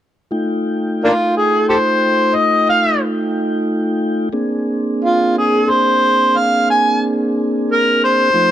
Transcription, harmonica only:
1.04 A#3 D4 F4
1.37 G#4
1.69 G4 A4 C5
2.35 D#5
2.69 F5
5.04 F4
5.38 G#4
5.70 C5
6.37 F5
6.70 G#5
7.72 A#4
8.04 C5

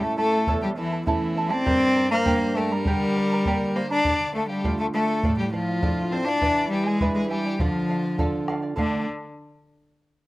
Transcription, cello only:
0.04 A3
0.18 A3
0.64 G3
0.78 E3
1.07 E3
1.51 C4
2.11 A#3
2.57 A3
2.73 G3
3.76 A#3
3.91 D4
4.35 A3
4.49 G3
4.79 A3
4.94 A3
5.39 G3
5.54 F3
6.12 C4
6.26 D4
6.70 G3
6.84 G#3
7.14 G#3
7.29 G3
7.59 F3
8.77 D3

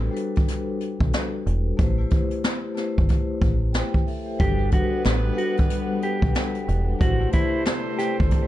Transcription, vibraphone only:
Already playing: G3 D4 F#4 A4 B4
0.11 G3 D4 F#4 A4 B4
1.77 A3 E4 G4 B4 C5
1.98 A3 E4 G4 B4 C5
2.75 A3 E4 G4 B4 C5
3.72 C5 G5
4.07 A4 E5
4.26 G4 C5
4.39 G3 D4 F#4 A4 B4
4.57 G3 D4 F#4 A4 B4
5.33 G3 D4 A4 B4 F#5
6.99 A3 E4 G4 B4 C5
7.20 A3 E4 G4 B4 C5
7.97 A3 E4 G4 B4 C5

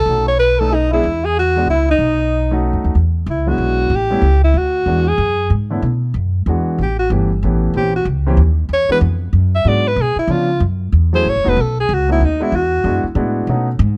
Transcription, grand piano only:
0.08 A3 C#4 D#4 F#4
0.60 A3 C#4 D#4 A4
0.93 G#3 B3 D4 G#4
1.56 G#3 B3 D4 F#4
2.51 A3 C#4 D#4 F#4
3.47 F#3 G#3 B3 D4 E4
4.10 G3 A3 B3 C#4 E4
4.86 E3 G#3 B3 D4 F#4
5.70 D3 A3 B3 C#4 E4
6.47 E3 G#3 B3 D4 F#4
7.11 E3 A3 B3 C#4 G4
7.44 E3 A3 B3 C#4 G4
7.76 E3 A#3 C4 C#4 G4
8.26 E3 A#3 C4 C#4 G4
8.89 E3 G#3 B3 D4 F#4
9.65 F#3 G#3 B3 D4 F#4
10.29 F3 B3 C#4 D4 F4
11.13 F#3 A3 C#4 E4 G#4
11.44 A3 B3 C#4 D#4 F#4
12.09 A3 B3 C#4 D#4 F#4
12.40 G#3 B3 D4 E4 F#4
12.84 G#3 B3 D4 E4 F#4
13.15 G#3 B3 D4 E4 F#4
13.49 A3 B3 C#4 D#4 F#4

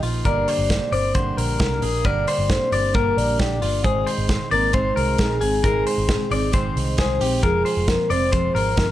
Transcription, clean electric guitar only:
0.03 F4
0.25 A#4
0.48 C5
0.93 D5
1.15 C5
1.37 A#4
1.82 G#4
2.05 A#4
2.28 C5
2.73 D5
2.95 A#4
3.39 G4
3.62 F4
3.84 G#4
4.07 C5
4.51 D5
4.74 C5
4.96 A#4
5.41 G#4
5.64 A#4
5.87 C5
6.32 D5
6.54 C5
6.98 G#4
7.21 G4
7.43 A#4
7.65 C5
8.10 D5
8.32 C5
8.55 A#4

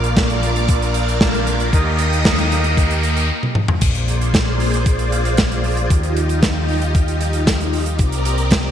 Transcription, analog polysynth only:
Already playing: A#3 D4 F4 A#4 D5
0.43 A#3 D4 F4 A#4 D5
1.21 A#3 D4 F4 A#4 D5
1.73 A#3 D#4 G4 A#4 D#5
2.51 A#3 D#4 G4 A#4 D#5

